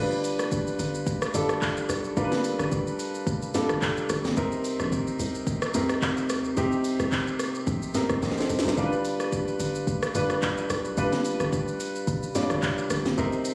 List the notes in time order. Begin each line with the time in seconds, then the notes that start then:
Already playing: G1 G3 D4 F4 A4 B4 C5
0.12 shaker
0.24 open hi-hat, shaker
0.39 F1, cross-stick, shaker
0.52 kick, shaker
0.67 shaker
0.79 G1, open hi-hat, shaker
0.95 shaker
1.07 kick, shaker
1.22 cross-stick, shaker
1.34 G1 G3 D4 F4 A4, mid tom, open hi-hat, shaker
1.49 cross-stick, shaker
1.62 kick, clap, shaker
1.77 shaker
1.89 B1, cross-stick, open hi-hat, shaker
2.04 shaker
2.17 G1 G3 D4 F4 A#4, kick, shaker
2.24 B4
2.32 snare, shaker
2.44 open hi-hat, shaker
2.59 G1, cross-stick, shaker
2.72 kick, shaker
2.87 shaker
2.99 open hi-hat, shaker
3.15 shaker
3.27 F1, kick, shaker
3.42 shaker
3.54 G3 D4 F4 A4, snare, mid tom, open hi-hat, shaker
3.69 G1, cross-stick, shaker
3.82 F1, kick, clap, shaker
3.97 shaker
4.09 G1, cross-stick, open hi-hat, shaker
4.25 G1, snare, shaker
4.37 C2 C3 C4 D#4 A#4, kick, shaker
4.52 shaker
4.64 open hi-hat, shaker
4.80 A#1, cross-stick, shaker
4.92 kick, shaker
5.07 shaker
5.20 C2, open hi-hat, shaker
5.35 shaker
5.47 kick, shaker
5.62 cross-stick, shaker
5.74 C2 C3 C4 D#4 A#4, mid tom, open hi-hat, shaker
5.89 cross-stick, shaker
6.02 kick, clap, shaker
6.17 shaker
6.29 D#2, cross-stick, open hi-hat, shaker
6.44 shaker
6.57 C2 C3 C4 D#4 G4, kick, shaker
6.72 shaker
6.84 open hi-hat, shaker
7.00 C2, cross-stick, shaker
7.12 kick, clap, shaker
7.27 shaker
7.39 cross-stick, open hi-hat, shaker
7.55 shaker
7.67 A#1, kick, shaker
7.82 shaker
7.94 C3 C4 D#4 A#4, snare, mid tom, open hi-hat, shaker
8.09 C2, kick, cross-stick, shaker
8.22 A#1 C5 D#5, kick, snare, shaker
8.31 snare
8.37 A4 C5, snare, shaker
8.50 C2, open hi-hat, shaker
8.59 snare
8.65 C2 G4 A#4, snare, shaker
8.77 G1 G3 D4 F4 A#4, kick, shaker
8.85 B4
8.92 shaker
9.05 open hi-hat, shaker
9.20 F1, cross-stick, shaker
9.32 kick, shaker
9.48 shaker
9.60 G1, open hi-hat, shaker
9.75 shaker
9.87 kick, shaker
10.03 cross-stick, shaker
10.15 G1 G3 D4 F4 B4, mid tom, open hi-hat, shaker
10.30 cross-stick, shaker
10.42 kick, clap, shaker
10.58 shaker
10.70 B1, cross-stick, open hi-hat, shaker
10.85 shaker
10.97 G1 G3 D4 F4 B4, kick, shaker
11.12 snare, shaker
11.25 open hi-hat, shaker
11.40 G1, cross-stick, shaker
11.53 kick, shaker
11.68 shaker
11.80 open hi-hat, shaker
11.95 shaker
12.07 F1, kick, shaker
12.23 shaker
12.35 G3 D4 F4 C#5, snare, mid tom, open hi-hat, shaker
12.43 D5
12.50 G1, cross-stick, shaker
12.63 F1, kick, clap, shaker
12.78 shaker
12.90 G1, cross-stick, open hi-hat, shaker
13.05 G1, snare, shaker
13.18 C2 C3 C4 D#4 A#4, kick, shaker
13.33 shaker
13.45 open hi-hat, shaker